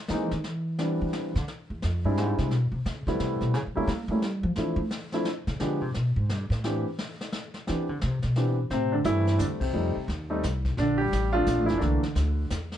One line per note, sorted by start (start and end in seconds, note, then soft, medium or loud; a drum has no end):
0.08 0.29 E3 medium
0.08 0.31 E3 medium
0.08 0.29 G#3 medium
0.08 0.29 A#3 medium
0.08 0.29 C4 medium
0.08 0.29 D#4 medium
0.08 snare medium
0.31 0.45 D#3 loud
0.31 snare soft
0.44 1.01 E3 medium
0.44 brush sweep medium
0.44 snare medium
0.78 1.31 E3 medium
0.78 1.30 G3 soft
0.78 1.31 B3 medium
0.78 1.31 C4 soft
0.78 1.31 D4 medium
0.78 snare medium
1.02 1.33 E3 medium
1.13 snare medium
1.35 1.43 D3 loud
1.35 snare soft
1.48 brush sweep soft
1.48 snare soft
1.70 1.82 E2 medium
1.82 2.04 F2 medium
1.82 snare medium
2.04 2.18 G2 medium
2.04 2.49 G3 medium
2.04 2.49 G#3 medium
2.04 2.49 C4 medium
2.04 2.49 D4 medium
2.04 2.49 E4 medium
2.17 2.38 G#2 medium
2.17 snare medium
2.38 2.51 C3 loud
2.38 snare soft
2.51 2.71 B2 medium
2.51 brush sweep medium
2.51 snare soft
2.72 2.84 C3 medium
2.85 3.06 C#3 medium
2.85 snare medium
3.07 3.19 D3 loud
3.07 3.52 G3 medium
3.07 3.52 A3 medium
3.07 3.52 B3 medium
3.07 3.52 C4 medium
3.07 3.52 E4 medium
3.07 snare soft
3.20 3.40 C3 medium
3.20 snare medium
3.41 3.54 B2 medium
3.41 snare soft
3.54 3.65 C#3 loud
3.54 brush sweep medium
3.54 snare medium
3.75 3.87 G3 medium
3.75 3.88 A3 medium
3.75 3.88 A#3 medium
3.75 3.88 C#4 medium
3.75 3.88 E4 medium
3.87 4.08 A#3 loud
3.87 snare medium
4.08 4.22 G3 medium
4.08 4.22 A3 medium
4.08 4.22 A3 soft
4.08 4.22 A#3 soft
4.08 4.22 C#4 soft
4.08 4.23 E4 medium
4.22 4.43 G3 medium
4.22 snare medium
4.43 4.56 F3 loud
4.56 4.76 E3 medium
4.56 4.77 F3 medium
4.56 4.77 A3 soft
4.56 4.77 C4 soft
4.56 4.77 D4 soft
4.56 4.77 E4 medium
4.56 brush sweep medium
4.56 snare soft
4.76 4.85 A3 loud
4.91 snare medium
5.12 5.25 F3 medium
5.12 5.25 A3 medium
5.12 5.25 C4 medium
5.12 5.25 D4 medium
5.12 5.25 E4 medium
5.12 snare soft
5.25 snare medium
5.47 5.60 C#3 loud
5.47 snare soft
5.60 5.81 D3 loud
5.60 5.80 F3 medium
5.60 5.80 G#3 medium
5.60 5.80 B3 soft
5.60 5.80 D4 soft
5.60 5.80 G4 medium
5.60 brush sweep soft
5.60 snare medium
5.81 5.94 C3 medium
5.94 6.16 B2 medium
5.94 snare medium
6.16 6.30 G#2 medium
6.29 6.49 G2 medium
6.29 snare medium
6.50 6.83 A2 medium
6.50 snare soft
6.64 6.84 E3 medium
6.64 6.84 B3 medium
6.64 6.84 C4 medium
6.64 6.84 D4 soft
6.64 6.84 G4 medium
6.64 brush sweep medium
6.64 snare medium
6.99 snare medium
7.21 snare soft
7.33 snare medium
7.54 snare soft
7.67 7.87 E3 medium
7.67 7.89 E3 medium
7.67 7.87 B3 medium
7.67 7.87 C4 soft
7.67 7.87 D4 medium
7.67 7.87 G4 medium
7.67 brush sweep soft
7.67 snare medium
7.89 8.01 D3 medium
8.01 8.23 C3 medium
8.01 snare medium
8.22 8.62 B2 medium
8.22 snare soft
8.36 8.56 E3 medium
8.36 8.56 B3 medium
8.36 8.56 C4 medium
8.36 8.56 D4 medium
8.36 8.56 G4 medium
8.36 snare soft
8.70 9.04 A2 medium
8.70 8.92 C3 medium
8.70 8.93 C4 loud
8.70 brush sweep soft
8.70 snare soft
8.92 8.99 D3 medium
8.92 8.97 D4 medium
9.04 9.38 G2 loud
9.04 9.39 E3 medium
9.04 9.57 G3 medium
9.04 9.57 A3 medium
9.04 9.57 C4 medium
9.04 9.37 E4 loud
9.04 snare medium
9.04 hi-hat pedal medium
9.27 snare soft
9.39 9.73 E2 medium
9.39 9.45 D3 medium
9.39 9.44 D4 medium
9.39 snare medium
9.39 hi-hat pedal medium
9.60 10.05 C3 medium
9.60 9.72 C4 medium
9.60 kick medium
9.60 crash medium
9.73 9.94 F2 medium
9.73 9.93 G3 medium
9.73 9.93 A3 medium
9.73 9.93 C4 medium
9.73 9.94 D#4 medium
9.73 brush sweep medium
9.96 muted upright bass stroke soft
10.08 10.42 D#2 loud
10.08 snare soft
10.30 10.42 G3 medium
10.30 10.42 A3 medium
10.30 10.42 C4 medium
10.30 10.42 D#4 medium
10.43 10.77 C2 loud
10.43 snare medium
10.43 hi-hat pedal medium
10.65 kick medium
10.65 snare soft
10.77 11.11 A#1 medium
10.77 11.00 D4 loud
10.77 brush sweep medium
10.77 snare medium
10.81 11.00 D3 medium
10.98 11.32 G3 medium
10.98 11.34 G4 loud
11.12 11.46 A1 medium
11.12 snare medium
11.12 hi-hat pedal medium
11.33 11.79 F3 medium
11.33 11.79 A3 medium
11.33 11.79 C4 medium
11.33 11.76 D4 medium
11.33 11.65 F4 loud
11.46 11.58 A#1 medium
11.46 snare medium
11.46 hi-hat pedal medium
11.58 11.68 A1 medium
11.66 11.80 F1 medium
11.66 11.79 E3 medium
11.66 11.79 E4 medium
11.66 snare soft
11.78 12.01 C2 medium
11.78 12.00 E3 medium
11.78 12.00 A3 medium
11.78 12.00 A#3 medium
11.78 11.80 D4 medium
11.78 12.01 D4 medium
11.82 12.47 D3 medium
11.82 brush sweep soft
11.82 snare soft
12.03 muted upright bass stroke soft
12.03 snare soft
12.15 12.49 D2 medium
12.15 snare medium
12.15 hi-hat pedal soft
12.50 12.78 E2 medium
12.50 snare medium
12.50 hi-hat pedal medium
12.72 snare soft